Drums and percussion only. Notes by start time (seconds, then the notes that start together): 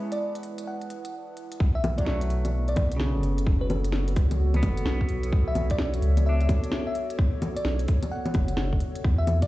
0.12 closed hi-hat
0.35 closed hi-hat
0.43 open hi-hat
0.58 closed hi-hat
0.82 closed hi-hat
0.90 open hi-hat
1.05 closed hi-hat
1.37 open hi-hat
1.52 closed hi-hat
1.60 kick
1.84 open hi-hat, low bongo
1.98 kick, closed hi-hat
2.07 snare
2.21 closed hi-hat
2.30 open hi-hat
2.45 closed hi-hat, low bongo
2.68 closed hi-hat
2.76 kick, open hi-hat, low bongo
2.92 closed hi-hat
3.00 snare
3.23 open hi-hat
3.38 closed hi-hat
3.47 kick
3.70 open hi-hat, low bongo
3.84 closed hi-hat
3.92 snare
4.08 closed hi-hat
4.16 kick, open hi-hat
4.31 closed hi-hat, low bongo
4.54 closed hi-hat, low bongo
4.63 kick, open hi-hat, low bongo
4.77 closed hi-hat
4.86 snare
5.01 kick
5.09 open hi-hat
5.23 closed hi-hat
5.33 kick
5.55 open hi-hat, low bongo
5.70 kick, closed hi-hat
5.78 snare
5.94 closed hi-hat
6.02 open hi-hat
6.17 closed hi-hat, low bongo
6.41 closed hi-hat
6.49 kick, open hi-hat, low bongo
6.64 closed hi-hat
6.72 snare
6.95 open hi-hat
7.10 closed hi-hat
7.19 kick
7.42 open hi-hat, low bongo
7.57 closed hi-hat
7.65 snare
7.79 closed hi-hat
7.88 kick, open hi-hat
8.03 closed hi-hat, low bongo
8.25 closed hi-hat, low bongo
8.34 kick, open hi-hat, low bongo
8.48 closed hi-hat
8.57 snare
8.73 kick
8.80 open hi-hat
8.95 closed hi-hat
9.04 kick
9.27 open hi-hat, low bongo
9.42 kick, closed hi-hat